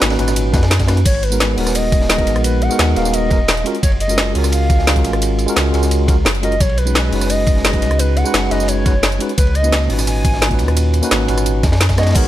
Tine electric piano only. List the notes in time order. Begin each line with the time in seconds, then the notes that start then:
Already playing: A#3 C#4 D#4 F#4 B4
0.17 A#2 C#4 D#4 F#4 B4
0.52 A#3 C#4 D#4 F#4 B4
0.86 A#3 C#4 D#4 F#4 B4
1.30 G#3 B3 D#4 F#4 A#4
1.54 G#3 B3 D#4
1.59 F#4 A#4
2.15 G#3 B3 D#4
2.20 F#4 A#4
2.69 G#3 B3 D#4 F#4 A#4
2.95 G#3 B3 D#4 F#4 A#4
3.30 G#3 B3 D#4 F#4 A#4
3.64 G#3 C#4 F4 F#4 A#4
4.08 G#3 C#4 F4 F#4 A#4
4.32 G#3 C#4 F4
4.37 F#4 A#4
4.93 G#3 C#4 F4
4.98 F#4 A#4
5.46 G#3 C#4 F4 F#4 A#4
5.72 G#3 C#4 F4 F#4 A#4
6.07 G#3 C#4 F4 F#4 A#4
6.42 G#3 C#4 F4 F#4 A#4
6.85 G#3 C#4 D#4 F#4 B4
7.09 G#3 C#4 D#4
7.14 F#4 B4
7.70 G#3 C#4 D#4
7.75 F#4 B4
8.24 G#3 C#4 D#4 F#4 B4
8.50 G#3 C#4 D#4 F#4 B4
8.84 G#3 C#4 D#4 F#4 B4
9.19 G#3 C#4 D#4 F#4 B4
9.62 A#3 C#4 D#4 F#4 B4
9.87 A#2 C#4 D#4
9.91 F#4 B4
10.47 A#2 C#4 D#4
10.52 F#4 B4
11.01 A#3 C#4 D#4 F#4 B4
11.27 A#2 C#4 D#4 F#4 B4
11.96 G#3 B3 D#4 F#4 C#5
12.14 G#3 B3 D#4 F#4 A#4